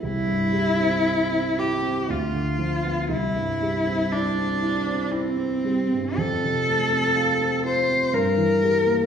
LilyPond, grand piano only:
\new Staff \with { instrumentName = "Grand piano" } { \time 3/4 \key c \major \tempo 4 = 59 c,16 g,16 g16 c'16 e'16 c'16 e'16 c'16 d,16 d16 f16 b16 | c,16 g,16 g16 c'16 e'16 c'16 e'16 c'16 e'16 c'16 g16 g,16 | f,16 c16 a16 c'16 f'16 c'16 f'16 c'16 g,16 e16 g16 bes16 | }